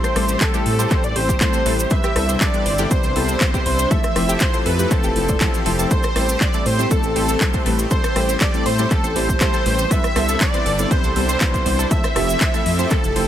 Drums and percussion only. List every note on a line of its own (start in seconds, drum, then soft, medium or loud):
0.04 cross-stick medium
0.04 closed hi-hat soft
0.04 cabasa soft
0.16 cross-stick medium
0.16 open hi-hat loud
0.28 closed hi-hat soft
0.28 cabasa medium
0.41 kick loud
0.41 clap loud
0.41 closed hi-hat medium
0.41 cabasa medium
0.54 closed hi-hat soft
0.54 cabasa soft
0.66 open hi-hat loud
0.79 closed hi-hat soft
0.79 cabasa medium
0.91 kick loud
0.91 clap soft
0.91 closed hi-hat medium
0.91 cabasa medium
1.03 closed hi-hat soft
1.03 cabasa soft
1.16 open hi-hat loud
1.29 kick medium
1.29 closed hi-hat soft
1.29 cabasa medium
1.41 kick loud
1.41 clap loud
1.41 closed hi-hat medium
1.41 cabasa medium
1.53 closed hi-hat soft
1.53 cabasa soft
1.66 open hi-hat loud
1.79 closed hi-hat soft
1.79 cabasa medium
1.90 kick loud
1.90 closed hi-hat medium
1.90 cabasa medium
2.03 cross-stick medium
2.03 closed hi-hat soft
2.03 cabasa soft
2.16 cross-stick medium
2.16 open hi-hat loud
2.29 closed hi-hat soft
2.29 cabasa medium
2.41 kick loud
2.41 clap loud
2.41 closed hi-hat medium
2.41 cabasa medium
2.54 closed hi-hat soft
2.54 cabasa soft
2.66 open hi-hat loud
2.78 closed hi-hat soft
2.78 cabasa medium
2.91 kick loud
2.91 closed hi-hat medium
2.91 cabasa medium
3.03 closed hi-hat soft
3.03 cabasa soft
3.16 open hi-hat loud
3.29 closed hi-hat soft
3.29 cabasa medium
3.41 kick loud
3.41 clap loud
3.41 closed hi-hat medium
3.41 cabasa medium
3.54 kick medium
3.54 closed hi-hat soft
3.54 cabasa soft
3.66 open hi-hat loud
3.79 closed hi-hat soft
3.79 cabasa medium
3.91 kick loud
3.91 closed hi-hat medium
3.91 cabasa medium
4.04 cross-stick medium
4.04 closed hi-hat soft
4.04 cabasa soft
4.16 cross-stick medium
4.16 open hi-hat loud
4.29 closed hi-hat soft
4.29 cabasa medium
4.40 kick loud
4.40 clap loud
4.40 closed hi-hat medium
4.40 cabasa medium
4.54 closed hi-hat soft
4.54 cabasa soft
4.66 open hi-hat loud
4.79 closed hi-hat soft
4.79 cabasa medium
4.91 kick loud
4.91 clap soft
4.91 closed hi-hat medium
4.91 cabasa medium
5.03 closed hi-hat soft
5.03 cabasa soft
5.16 open hi-hat loud
5.29 kick medium
5.29 closed hi-hat soft
5.29 cabasa medium
5.41 kick loud
5.41 clap loud
5.41 closed hi-hat medium
5.41 cabasa medium
5.54 closed hi-hat soft
5.54 cabasa soft
5.66 open hi-hat loud
5.79 closed hi-hat soft
5.79 cabasa medium
5.91 kick loud
5.91 closed hi-hat medium
5.91 cabasa medium
6.03 cross-stick medium
6.03 closed hi-hat soft
6.03 cabasa soft
6.16 cross-stick medium
6.16 open hi-hat loud
6.29 closed hi-hat soft
6.29 cabasa medium
6.41 kick loud
6.41 clap loud
6.41 closed hi-hat medium
6.41 cabasa medium
6.54 closed hi-hat soft
6.54 cabasa soft
6.66 open hi-hat loud
6.79 closed hi-hat soft
6.79 cabasa medium
6.91 kick loud
6.91 closed hi-hat medium
6.91 cabasa medium
7.03 closed hi-hat soft
7.03 cabasa soft
7.16 open hi-hat loud
7.29 closed hi-hat soft
7.29 cabasa medium
7.41 kick loud
7.41 clap loud
7.41 closed hi-hat medium
7.41 cabasa medium
7.53 kick medium
7.53 closed hi-hat soft
7.53 cabasa soft
7.66 open hi-hat loud
7.79 closed hi-hat soft
7.79 cabasa medium
7.91 kick loud
7.91 closed hi-hat medium
7.91 cabasa medium
8.04 cross-stick medium
8.04 closed hi-hat soft
8.04 cabasa soft
8.16 cross-stick medium
8.16 open hi-hat loud
8.29 closed hi-hat soft
8.29 cabasa medium
8.41 kick loud
8.41 clap loud
8.41 closed hi-hat medium
8.41 cabasa medium
8.54 closed hi-hat soft
8.54 cabasa soft
8.66 open hi-hat loud
8.79 closed hi-hat soft
8.79 cabasa medium
8.91 kick loud
8.91 clap soft
8.91 closed hi-hat medium
8.91 cabasa medium
9.04 closed hi-hat soft
9.04 cabasa soft
9.16 open hi-hat loud
9.29 kick medium
9.29 closed hi-hat soft
9.29 cabasa medium
9.41 kick loud
9.41 clap loud
9.41 closed hi-hat medium
9.41 cabasa medium
9.53 closed hi-hat soft
9.53 cabasa soft
9.66 open hi-hat loud
9.79 closed hi-hat soft
9.79 cabasa medium
9.91 kick loud
9.91 closed hi-hat medium
9.91 cabasa medium
10.04 cross-stick medium
10.04 closed hi-hat soft
10.04 cabasa soft
10.16 cross-stick medium
10.16 open hi-hat loud
10.29 closed hi-hat soft
10.29 cabasa medium
10.41 kick loud
10.41 clap loud
10.41 closed hi-hat medium
10.41 cabasa medium
10.54 closed hi-hat soft
10.54 cabasa soft
10.66 open hi-hat loud
10.79 closed hi-hat soft
10.79 cabasa medium
10.91 kick loud
10.91 closed hi-hat medium
10.91 cabasa medium
11.04 closed hi-hat soft
11.04 cabasa soft
11.16 open hi-hat loud
11.29 closed hi-hat soft
11.29 cabasa medium
11.41 kick loud
11.41 clap loud
11.41 closed hi-hat medium
11.41 cabasa medium
11.54 kick medium
11.54 closed hi-hat soft
11.54 cabasa soft
11.66 open hi-hat loud
11.79 closed hi-hat soft
11.79 cabasa medium
11.91 kick loud
11.91 closed hi-hat medium
11.91 cabasa medium
12.04 cross-stick medium
12.04 closed hi-hat soft
12.04 cabasa soft
12.16 cross-stick medium
12.16 open hi-hat loud
12.29 closed hi-hat soft
12.29 cabasa medium
12.41 kick loud
12.41 clap loud
12.41 closed hi-hat medium
12.41 cabasa medium
12.54 closed hi-hat soft
12.54 cabasa soft
12.66 open hi-hat loud
12.79 closed hi-hat soft
12.79 cabasa medium
12.91 kick loud
12.91 clap soft
12.91 closed hi-hat medium
12.91 cabasa medium
13.04 closed hi-hat soft
13.04 cabasa soft
13.16 open hi-hat loud